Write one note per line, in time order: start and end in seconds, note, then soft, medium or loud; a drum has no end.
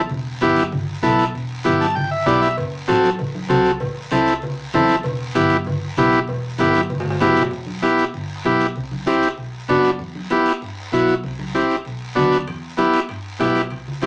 0.10 0.35 E1 medium
0.10 high conga soft
0.10 low conga medium
0.10 long guiro medium
0.41 0.54 G1 medium
0.41 0.63 B3 medium
0.41 0.64 E4 medium
0.41 0.64 G4 medium
0.41 high conga medium
0.41 short guiro medium
0.56 high conga medium
0.56 short guiro medium
0.72 0.97 G1 loud
0.72 high conga soft
0.72 low conga medium
0.72 long guiro medium
1.03 1.28 B1 loud
1.03 1.25 B3 medium
1.03 1.25 E4 medium
1.03 1.25 A4 medium
1.03 high conga medium
1.03 low conga medium
1.03 short guiro medium
1.19 short guiro medium
1.34 1.59 E1 loud
1.34 high conga soft
1.34 long guiro medium
1.65 1.78 G1 loud
1.65 1.87 B3 medium
1.65 1.87 E4 medium
1.65 1.87 G4 medium
1.65 high conga medium
1.65 short guiro medium
1.81 1.95 A5 medium
1.81 high conga medium
1.81 short guiro medium
1.95 2.21 G1 loud
1.95 2.10 G5 medium
1.95 high conga soft
1.95 low conga medium
1.95 long guiro medium
2.11 2.26 E5 medium
2.26 2.51 B1 loud
2.26 2.48 B3 medium
2.26 2.48 E4 medium
2.26 2.49 G4 medium
2.26 2.41 D5 medium
2.26 high conga loud
2.26 short guiro medium
2.42 2.56 E5 medium
2.42 short guiro medium
2.58 2.83 F#1 medium
2.58 cowbell loud
2.58 high conga soft
2.58 long guiro medium
2.88 3.01 A1 loud
2.88 3.10 C4 medium
2.88 3.10 F#4 medium
2.88 3.10 A4 medium
2.88 cowbell medium
2.88 high conga loud
2.88 short guiro medium
3.04 high conga medium
3.04 short guiro medium
3.19 3.44 A1 medium
3.19 cowbell medium
3.19 high conga soft
3.19 low conga medium
3.19 long guiro medium
3.35 high conga medium
3.49 3.75 C2 loud
3.49 3.71 C4 medium
3.49 3.72 F#4 medium
3.49 3.72 A4 medium
3.49 cowbell medium
3.49 high conga loud
3.49 low conga medium
3.49 short guiro medium
3.65 short guiro medium
3.80 4.06 A1 medium
3.80 cowbell loud
3.80 high conga soft
3.80 low conga medium
3.80 long guiro medium
4.11 4.25 C2 loud
4.11 4.34 C4 medium
4.11 4.34 E4 medium
4.11 4.34 A4 medium
4.11 cowbell medium
4.11 high conga loud
4.11 short guiro medium
4.26 short guiro medium
4.42 4.68 C2 medium
4.42 cowbell medium
4.42 high conga soft
4.42 low conga medium
4.42 long guiro medium
4.73 4.99 E2 loud
4.73 4.96 C4 medium
4.73 4.96 E4 medium
4.73 4.96 A4 loud
4.73 cowbell medium
4.73 high conga medium
4.73 low conga medium
4.73 short guiro medium
4.88 short guiro medium
5.03 5.30 E1 loud
5.03 cowbell loud
5.03 high conga soft
5.03 low conga medium
5.03 long guiro medium
5.35 5.48 G1 loud
5.35 5.57 B3 medium
5.35 5.57 E4 medium
5.35 5.57 G4 medium
5.35 cowbell medium
5.35 high conga medium
5.35 short guiro medium
5.49 high conga medium
5.49 short guiro medium
5.65 5.91 G1 medium
5.65 cowbell medium
5.65 high conga soft
5.65 low conga medium
5.65 long guiro medium
5.96 6.22 B1 loud
5.96 6.19 B3 medium
5.96 6.19 E4 medium
5.96 6.20 G4 loud
5.96 cowbell medium
5.96 high conga medium
5.96 low conga medium
5.96 short guiro medium
6.12 short guiro medium
6.27 6.53 E1 loud
6.27 cowbell medium
6.27 high conga soft
6.27 long guiro medium
6.58 6.72 G1 loud
6.58 6.81 B3 medium
6.58 6.81 E4 medium
6.58 6.81 G4 medium
6.58 cowbell medium
6.58 high conga medium
6.58 high timbale medium
6.58 short guiro medium
6.70 high timbale medium
6.74 high conga medium
6.74 short guiro medium
6.90 7.03 G1 loud
6.90 cowbell medium
6.90 high conga soft
6.90 low conga medium
6.90 long guiro medium
7.00 low timbale medium
7.06 7.20 G1 loud
7.10 low timbale medium
7.20 7.35 F#1 medium
7.20 7.42 B3 medium
7.20 7.43 E4 medium
7.20 7.43 G4 loud
7.20 cowbell medium
7.20 high conga medium
7.20 low conga medium
7.20 low timbale medium
7.20 short guiro medium
7.35 7.51 E1 medium
7.35 short guiro medium
7.42 low timbale medium
7.51 8.01 E1 medium
7.51 long guiro medium
7.67 high conga medium
7.82 8.04 B3 medium
7.82 8.04 E4 medium
7.82 8.05 G4 medium
7.82 high conga medium
7.82 short guiro medium
7.98 short guiro medium
8.14 8.39 G1 medium
8.14 high conga soft
8.14 long guiro medium
8.44 8.58 B1 loud
8.44 8.67 B3 medium
8.44 8.67 E4 medium
8.44 8.67 G4 medium
8.44 high conga medium
8.44 short guiro medium
8.59 short guiro medium
8.76 9.26 C2 medium
8.76 high conga soft
8.76 long guiro medium
8.91 high conga medium
8.91 low conga medium
9.06 9.28 C4 medium
9.06 9.29 E4 medium
9.06 9.29 G4 medium
9.06 high conga medium
9.06 short guiro medium
9.22 short guiro medium
9.37 9.62 B1 medium
9.37 high conga soft
9.37 long guiro medium
9.68 9.81 F#2 medium
9.68 9.90 B3 medium
9.68 9.91 D4 medium
9.68 9.91 F#4 loud
9.68 high conga medium
9.68 low conga medium
9.68 short guiro medium
9.84 short guiro medium
9.99 10.49 E2 medium
9.99 high conga soft
9.99 long guiro medium
10.15 high conga medium
10.30 10.52 B3 medium
10.30 10.53 E4 medium
10.30 10.53 G4 medium
10.30 high conga medium
10.30 short guiro medium
10.46 short guiro medium
10.61 10.86 G2 medium
10.61 high conga soft
10.61 long guiro medium
10.92 11.05 B1 medium
10.92 11.14 B3 medium
10.92 11.14 E4 medium
10.92 11.15 F#4 medium
10.92 high conga medium
10.92 short guiro medium
11.08 high conga medium
11.08 short guiro medium
11.23 11.73 C2 medium
11.23 high conga soft
11.23 long guiro medium
11.39 high conga medium
11.39 low conga medium
11.55 11.76 C4 medium
11.55 11.76 E4 medium
11.55 11.76 G4 medium
11.55 high conga medium
11.55 short guiro medium
11.70 short guiro medium
11.85 12.10 B1 medium
11.85 high conga soft
11.85 long guiro medium
12.15 12.29 D2 medium
12.15 12.38 B3 medium
12.15 12.38 D4 medium
12.15 12.38 F#4 medium
12.15 high conga medium
12.15 low conga medium
12.15 short guiro medium
12.31 high conga medium
12.31 short guiro medium
12.47 12.97 E2 medium
12.47 high timbale medium
12.47 long guiro medium
12.77 13.00 B3 medium
12.77 13.00 E4 medium
12.77 13.00 G4 medium
12.77 high conga medium
12.77 high timbale medium
12.77 short guiro medium
12.93 high timbale medium
12.93 short guiro medium
13.09 13.34 G2 medium
13.09 high conga soft
13.09 high timbale medium
13.09 long guiro medium
13.39 13.52 B1 loud
13.39 13.62 B3 medium
13.39 13.62 E4 medium
13.39 13.62 G4 medium
13.39 high conga medium
13.39 high timbale medium
13.39 low timbale medium
13.39 short guiro medium
13.55 high timbale medium
13.55 short guiro medium
13.70 14.06 C2 medium
13.70 high conga soft
13.70 high timbale medium
13.70 long guiro medium
13.88 low conga medium
14.01 14.06 C4 medium
14.01 14.06 E4 medium
14.01 14.06 G4 medium
14.01 high conga medium
14.01 high timbale medium
14.01 short guiro medium